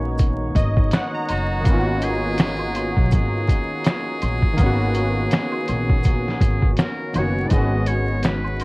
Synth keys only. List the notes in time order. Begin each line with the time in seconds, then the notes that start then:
Already playing: D#3 A#3 B3 C#4 D#4
0.56 D#5
0.93 F#5
1.15 A#5
1.28 A#5
1.60 D#3 A#3
1.66 B3 C#4
1.73 F4
1.80 F#4
4.53 D#3 A#3
4.59 B3 C#4
4.66 F#4
7.13 D#3 A#3 B3
7.17 C#4 F#4
7.45 G#2 D#3
7.50 G#3 B3
7.55 C#4 F#4